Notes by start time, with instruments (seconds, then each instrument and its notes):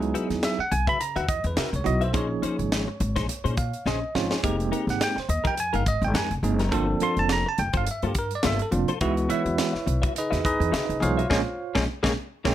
Already playing: upright bass C#2, tine electric piano F#3 B3 D#4 E4 G#4
0.02 closed hi-hat
0.14 clean electric guitar D#4 F#4 B4 E5, closed hi-hat
0.30 upright bass E2, muted clean electric guitar stroke, snare, closed hi-hat
0.43 tine electric piano E5, snare, closed hi-hat
0.59 tine electric piano F#5, muted clean electric guitar stroke, muted upright bass stroke
0.72 upright bass B1, tine electric piano G#5, muted clean electric guitar stroke, closed hi-hat
0.87 upright bass C#3, clean electric guitar F#4 B4 E5, tine electric piano B5, kick, closed hi-hat
1.00 tine electric piano A#5, muted clean electric guitar stroke, closed hi-hat
1.16 upright bass E2, clean electric guitar D#4 F#4 B4 E5, tine electric piano F#5, closed hi-hat
1.28 tine electric piano D#5, kick, closed hi-hat
1.44 upright bass E2, tine electric piano B4, closed hi-hat
1.57 upright bass C#3, clean electric guitar D#4 F#4 B4 E5, tine electric piano A#4, snare, closed hi-hat
1.72 upright bass C#2, tine electric piano C#5, muted clean electric guitar stroke, closed hi-hat
1.84 upright bass B1, tine electric piano F#3 B3 D#4 E4 F#4 D#5, muted clean electric guitar stroke, closed hi-hat
2.01 clean electric guitar F#4 B4 E5, tine electric piano C5, closed hi-hat
2.13 upright bass A#1, tine electric piano F3 A#3 C#4 D#4 G#4 C#5, clean electric guitar C#4 D#4 G#4 C5, kick, closed hi-hat
2.30 muted clean electric guitar stroke
2.42 clean electric guitar C#4 D#4 G#4 C5, muted upright bass stroke, closed hi-hat
2.59 upright bass G#1, muted clean electric guitar stroke, closed hi-hat
2.72 snare, closed hi-hat
2.88 muted clean electric guitar stroke
3.00 upright bass G#1, muted clean electric guitar stroke, closed hi-hat
3.16 upright bass A#1, clean electric guitar D#4 G#4 C5, kick, snare, closed hi-hat
3.29 muted clean electric guitar stroke, closed hi-hat
3.44 upright bass A#2, clean electric guitar C#4 D#4 G#4 C5, closed hi-hat
3.57 tine electric piano F5, muted clean electric guitar stroke, kick, closed hi-hat
3.73 closed hi-hat
3.86 upright bass A#1, clean electric guitar C#4 D#4 G#4 C5, tine electric piano D#5, snare
4.02 muted clean electric guitar stroke
4.15 upright bass G#1, tine electric piano F3 C4 C#4 D#4 F4 C#5, muted clean electric guitar stroke, snare
4.31 clean electric guitar D#4 G#4 C5, muted upright bass stroke, snare
4.43 upright bass F1, clean electric guitar G#3 D#4 G4 A#4, tine electric piano G#3 A#3 C4 D#4 G4, kick, closed hi-hat
4.59 muted clean electric guitar stroke, closed hi-hat
4.71 clean electric guitar G#3 D#4 G4 A#4, closed hi-hat
4.87 upright bass G#1, tine electric piano F#5, muted clean electric guitar stroke, snare, closed hi-hat
5.01 tine electric piano G5, snare, closed hi-hat
5.16 tine electric piano C5, muted clean electric guitar stroke, muted upright bass stroke, snare
5.29 upright bass D#2, tine electric piano D#5, muted clean electric guitar stroke, closed hi-hat
5.44 upright bass F2, clean electric guitar D#4 G4 A#4, tine electric piano G5, kick, closed hi-hat
5.57 tine electric piano G#5, muted clean electric guitar stroke, closed hi-hat
5.73 upright bass G#1, clean electric guitar G#3 D#4 G4 A#4, tine electric piano F5, closed hi-hat
5.86 tine electric piano D#5, kick, closed hi-hat
6.02 upright bass G#1, tine electric piano G5, closed hi-hat
6.14 upright bass F2, clean electric guitar G#3 D#4 G4 A#4, tine electric piano G#5, snare, closed hi-hat
6.31 upright bass F1, muted clean electric guitar stroke, closed hi-hat
6.43 upright bass F#1, tine electric piano G#3 A#3 C4 D#4 G#4, muted clean electric guitar stroke, closed hi-hat
6.59 clean electric guitar D#4 G4 A#4, snare, closed hi-hat
6.72 upright bass G1, tine electric piano F3 A#3 C4 D4 A4, clean electric guitar A#3 F4 A4 C5, kick, closed hi-hat
6.89 muted clean electric guitar stroke
7.00 clean electric guitar A#3 F4 A4 C5, tine electric piano C6, muted upright bass stroke, closed hi-hat
7.17 upright bass F1, tine electric piano A5, muted clean electric guitar stroke, closed hi-hat
7.29 tine electric piano A#5, snare, closed hi-hat
7.46 tine electric piano A5, muted clean electric guitar stroke
7.58 upright bass F1, tine electric piano G5, muted clean electric guitar stroke, closed hi-hat
7.73 upright bass G1, clean electric guitar F4 A4 C5, kick, closed hi-hat
7.77 tine electric piano F5
7.86 muted clean electric guitar stroke, closed hi-hat
7.91 tine electric piano E5
8.02 upright bass G2, clean electric guitar A#3 F4 A4 C5, closed hi-hat
8.07 tine electric piano G4
8.15 muted clean electric guitar stroke, kick, closed hi-hat
8.19 tine electric piano A#4
8.31 closed hi-hat
8.35 tine electric piano D5
8.43 upright bass G1, clean electric guitar A#3 F4 A4 C5, tine electric piano E5, snare, closed hi-hat
8.59 tine electric piano A4, muted clean electric guitar stroke, closed hi-hat
8.71 upright bass F1, tine electric piano F3 A#3 C4 D4 F4, muted clean electric guitar stroke, closed hi-hat
8.88 clean electric guitar F4 A4 C5, closed hi-hat
9.01 upright bass C#2, tine electric piano E3 G#3 B3 E4 F#4, clean electric guitar D#4 F#4 B4 E5, kick, closed hi-hat
9.17 closed hi-hat
9.29 clean electric guitar D#4 F#4 B4 E5, tine electric piano E4 B4 C#5 E5, closed hi-hat
9.46 upright bass E2, closed hi-hat
9.58 snare, closed hi-hat
9.73 muted clean electric guitar stroke, muted upright bass stroke, snare
9.86 upright bass B1, muted clean electric guitar stroke, closed hi-hat
10.02 upright bass C#3, clean electric guitar F#4 B4 E5, kick, closed hi-hat
10.15 tine electric piano D#4 B4 D#5, muted clean electric guitar stroke, closed hi-hat
10.19 tine electric piano G#4
10.30 upright bass E2, clean electric guitar D#4 F#4 B4 E5, snare, closed hi-hat
10.43 tine electric piano D#4 G#4 B4 D#5, muted clean electric guitar stroke, kick, closed hi-hat
10.60 upright bass E2, closed hi-hat
10.72 clean electric guitar D#4 F#4 B4 E5, snare, closed hi-hat
10.88 upright bass C#2, muted clean electric guitar stroke, closed hi-hat
11.00 upright bass B1, tine electric piano E3 G#3 B3 D#4 F4 G#4 C5 C#5 F5, muted clean electric guitar stroke, closed hi-hat
11.17 clean electric guitar F#4 B4 E5, closed hi-hat
11.30 upright bass A#1, tine electric piano G#3 A#3 C#4, clean electric guitar G#4 A#4 C#5, kick, snare
11.75 upright bass A#1, tine electric piano G#3 A#3 C#4, clean electric guitar G#4 A#4 C#5, kick, snare
12.03 upright bass A#1, tine electric piano G#3 A#3 C#4, clean electric guitar G#4 A#4 C#5, kick, snare
12.45 upright bass A#1, tine electric piano G#3 A#3 C#4 G5, clean electric guitar G#4 A#4 C#5, kick, snare